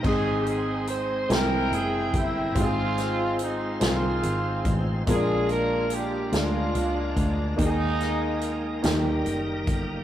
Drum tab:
CC |x-----|------|------|------|
HH |-xxxxx|xxxxxx|xxxxxx|xxxxxx|
SD |---o--|-o-o--|---o--|-o-o--|
BD |o----o|o----o|o----o|o----o|